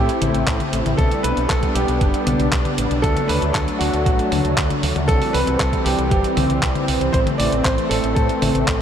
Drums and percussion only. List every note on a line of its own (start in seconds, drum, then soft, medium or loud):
0.09 closed hi-hat soft
0.22 closed hi-hat loud
0.22 high tom medium
0.34 closed hi-hat soft
0.47 kick loud
0.47 clap loud
0.47 closed hi-hat medium
0.60 closed hi-hat soft
0.60 high tom medium
0.73 closed hi-hat medium
0.86 closed hi-hat soft
0.86 high tom medium
0.99 kick loud
0.99 closed hi-hat medium
1.11 closed hi-hat soft
1.24 closed hi-hat medium
1.37 closed hi-hat soft
1.50 kick loud
1.50 clap loud
1.50 closed hi-hat medium
1.63 kick medium
1.63 closed hi-hat soft
1.76 closed hi-hat medium
1.88 closed hi-hat soft
2.01 kick loud
2.01 closed hi-hat medium
2.14 closed hi-hat soft
2.27 closed hi-hat medium
2.27 high tom medium
2.40 closed hi-hat soft
2.52 kick loud
2.52 clap loud
2.52 closed hi-hat medium
2.65 closed hi-hat soft
2.65 high tom medium
2.78 closed hi-hat medium
2.91 closed hi-hat soft
3.04 kick loud
3.04 closed hi-hat medium
3.17 closed hi-hat soft
3.17 high tom medium
3.29 open hi-hat loud
3.42 closed hi-hat soft
3.55 kick loud
3.55 clap loud
3.55 closed hi-hat medium
3.68 closed hi-hat soft
3.81 open hi-hat loud
3.94 closed hi-hat soft
4.06 kick loud
4.06 closed hi-hat medium
4.19 closed hi-hat soft
4.32 open hi-hat loud
4.32 high tom medium
4.45 closed hi-hat soft
4.58 kick loud
4.58 clap loud
4.58 closed hi-hat medium
4.70 closed hi-hat soft
4.70 high tom medium
4.83 open hi-hat loud
4.96 closed hi-hat soft
4.96 high tom medium
5.09 kick loud
5.09 closed hi-hat medium
5.22 open hi-hat medium
5.34 open hi-hat loud
5.47 closed hi-hat soft
5.60 kick loud
5.60 clap loud
5.60 closed hi-hat medium
5.73 kick medium
5.73 closed hi-hat soft
5.86 open hi-hat loud
5.99 closed hi-hat soft
6.11 kick loud
6.11 closed hi-hat medium
6.24 closed hi-hat soft
6.37 open hi-hat loud
6.37 high tom medium
6.50 closed hi-hat soft
6.63 kick loud
6.63 clap loud
6.63 closed hi-hat medium
6.75 closed hi-hat soft
6.75 high tom medium
6.88 open hi-hat loud
7.01 closed hi-hat soft
7.14 kick loud
7.14 closed hi-hat medium
7.27 closed hi-hat soft
7.27 high tom medium
7.40 open hi-hat loud
7.52 closed hi-hat soft
7.65 kick loud
7.65 clap loud
7.65 closed hi-hat medium
7.78 closed hi-hat soft
7.91 open hi-hat loud
8.04 closed hi-hat soft
8.16 kick loud
8.16 closed hi-hat medium
8.29 closed hi-hat soft
8.42 open hi-hat loud
8.42 high tom medium
8.55 closed hi-hat soft
8.68 kick loud
8.68 clap loud
8.68 closed hi-hat medium